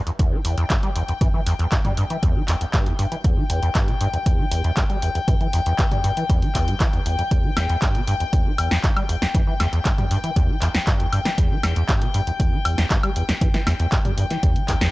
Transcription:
0.07 acid bass E2, closed hi-hat
0.19 acid bass E2, kick, closed hi-hat
0.29 acid bass E3, string section G5
0.45 acid bass E2, open hi-hat
0.58 acid bass E2, closed hi-hat
0.70 acid bass G2, kick, clap, closed hi-hat
0.83 acid bass G3, closed hi-hat
0.96 acid bass E2, open hi-hat
1.08 acid bass E2, closed hi-hat
1.21 acid bass E3, kick, closed hi-hat, mid tom
1.34 acid bass E3
1.46 acid bass E2, open hi-hat
1.59 acid bass E2, closed hi-hat
1.72 acid bass G2, kick, clap, closed hi-hat
1.85 acid bass G3, closed hi-hat, mid tom
1.97 acid bass G2, open hi-hat
2.10 acid bass E3, closed hi-hat
2.23 acid bass E2, kick, closed hi-hat
2.36 acid bass E3
2.48 acid bass E2, clap, open hi-hat
2.61 acid bass E2, closed hi-hat
2.73 acid bass G2, kick, clap, closed hi-hat
2.86 acid bass E2, closed hi-hat
2.99 acid bass G2, open hi-hat
3.12 acid bass E3, closed hi-hat
3.24 acid bass E2, kick, closed hi-hat
3.37 acid bass E3
3.50 acid bass E2, open hi-hat
3.63 acid bass E2, closed hi-hat
3.75 acid bass G2, kick, clap, closed hi-hat
3.88 acid bass B2, closed hi-hat
4.01 acid bass G2, open hi-hat
4.13 acid bass E2, closed hi-hat
4.26 acid bass E2, kick, closed hi-hat
4.39 acid bass E3
4.51 acid bass E2, open hi-hat
4.64 acid bass E2, closed hi-hat
4.77 acid bass G2, kick, clap, closed hi-hat
4.90 acid bass G3, closed hi-hat
5.02 acid bass E2, open hi-hat
5.15 acid bass E2, closed hi-hat
5.28 acid bass E3, kick, closed hi-hat, mid tom
5.41 acid bass E3, closed hi-hat
5.53 acid bass E2, open hi-hat
5.66 acid bass E2, closed hi-hat
5.79 acid bass G2, kick, clap, closed hi-hat
5.91 acid bass G3, closed hi-hat, mid tom
6.04 acid bass G2, open hi-hat
6.17 acid bass E3, closed hi-hat
6.29 acid bass E2, kick, closed hi-hat
6.42 acid bass E3, closed hi-hat
6.55 acid bass E2, kick, clap, open hi-hat
6.68 acid bass G2, closed hi-hat
6.80 acid bass E3, kick, clap, closed hi-hat
6.93 acid bass E2, closed hi-hat
7.06 acid bass E2, open hi-hat
7.19 acid bass F2, closed hi-hat
7.31 acid bass E2, kick, closed hi-hat
7.44 acid bass E3
7.57 acid bass E2, snare, open hi-hat, high woodblock
7.69 acid bass E2, closed hi-hat
7.82 acid bass G2, kick, clap, closed hi-hat
7.95 acid bass B2, closed hi-hat
8.07 acid bass G2, open hi-hat
8.20 acid bass E2, closed hi-hat
8.33 acid bass E2, kick, closed hi-hat
8.46 acid bass E3
8.58 acid bass E2, open hi-hat, high woodblock
8.71 acid bass E2, snare, closed hi-hat
8.84 acid bass G2, kick, clap, closed hi-hat
8.96 acid bass G3, closed hi-hat, high woodblock
9.09 acid bass E2, open hi-hat
9.22 acid bass E2, snare, closed hi-hat
9.35 acid bass E3, kick, closed hi-hat, mid tom
9.47 acid bass E3
9.60 acid bass E2, snare, open hi-hat, high woodblock
9.73 acid bass E2, closed hi-hat
9.85 acid bass G2, kick, clap, closed hi-hat
9.98 acid bass G3, closed hi-hat, mid tom
10.11 acid bass G2, open hi-hat
10.24 acid bass E3, closed hi-hat
10.36 acid bass E2, kick, closed hi-hat
10.49 acid bass E3
10.62 acid bass E2, clap, open hi-hat
10.74 acid bass E2, snare, closed hi-hat
10.87 acid bass G2, kick, clap, closed hi-hat
11.00 acid bass E2, closed hi-hat
11.12 acid bass G2, open hi-hat, high woodblock
11.25 acid bass E3, snare, closed hi-hat
11.38 acid bass E2, kick, closed hi-hat
11.51 acid bass E3
11.63 acid bass E2, snare, open hi-hat, high woodblock
11.76 acid bass E2, closed hi-hat
11.89 acid bass G2, kick, clap, closed hi-hat
12.02 acid bass B2, closed hi-hat
12.14 acid bass G2, open hi-hat
12.27 acid bass E2, closed hi-hat
12.40 acid bass E2, kick, closed hi-hat
12.52 acid bass E3
12.65 acid bass E2, open hi-hat, high woodblock
12.78 acid bass E2, snare, closed hi-hat
12.90 acid bass G2, kick, clap, closed hi-hat
13.03 acid bass G3, closed hi-hat, high woodblock
13.16 acid bass E2, open hi-hat
13.29 acid bass E2, snare, closed hi-hat
13.41 acid bass E3, kick, closed hi-hat, mid tom
13.54 acid bass E3, snare, closed hi-hat
13.67 acid bass E2, snare, open hi-hat, high woodblock
13.80 acid bass E2, closed hi-hat
13.92 acid bass G2, kick, clap, closed hi-hat
14.05 acid bass G3, closed hi-hat, mid tom
14.18 acid bass G2, open hi-hat
14.30 acid bass E3, snare, closed hi-hat
14.43 acid bass E2, kick, closed hi-hat
14.56 acid bass E3, closed hi-hat
14.68 acid bass E2, kick, clap, open hi-hat
14.81 acid bass E2, snare, closed hi-hat

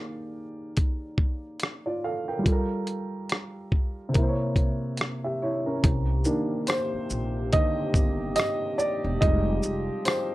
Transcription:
Already playing: upright piano D#3 A#3 G4 G#4 D5 F5
0.77 kick, closed hi-hat
1.18 kick
1.60 cross-stick, closed hi-hat
1.86 upright piano F4 D5
2.04 upright piano A4 F5
2.28 upright piano A#4 G5
2.39 upright piano G3
2.43 upright piano F4, kick, closed hi-hat
2.48 upright piano A4
2.52 upright piano A#4
2.87 closed hi-hat
3.29 cross-stick, closed hi-hat
3.72 kick
4.09 upright piano C3
4.13 upright piano A#3, kick, closed hi-hat
4.18 upright piano E4
4.22 upright piano C5
4.29 upright piano C#5
4.56 kick, closed hi-hat
4.97 cross-stick, closed hi-hat
5.24 upright piano G4 E5
5.42 upright piano E4 C#5
5.66 upright piano C#4 A#4
5.83 upright bass C2, french horn section C3 A#3 C4 G4, kick, closed hi-hat
6.25 upright piano D#3 A#3 D4, shaker
6.67 upright piano C5, cross-stick, closed hi-hat, tambourine
6.94 muted upright bass stroke
7.10 upright bass A#1, shaker
7.53 upright piano D3 D#3 A#3 D#5, kick, closed hi-hat
7.94 upright bass G1, kick, shaker
8.36 upright piano D#5, cross-stick, closed hi-hat, tambourine
8.78 upright piano D5, shaker
9.04 upright bass E1
9.21 upright bass F1, french horn section F3 C4 F4, upright piano G3 G#3 D#4 D#5, kick, closed hi-hat
9.63 upright bass F1, shaker
10.05 upright piano C5, cross-stick, closed hi-hat, tambourine

